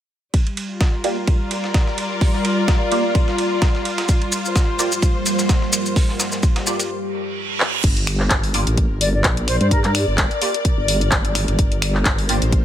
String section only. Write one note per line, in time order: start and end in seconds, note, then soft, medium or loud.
0.34 6.90 G3 medium
0.71 6.90 F4 medium
0.90 4.65 A#4 medium
1.45 4.61 D5 medium
4.47 4.50 C5 medium
4.47 6.90 C5 medium
8.36 12.65 A#4 medium
9.16 12.43 D5 medium
12.28 12.65 C5 medium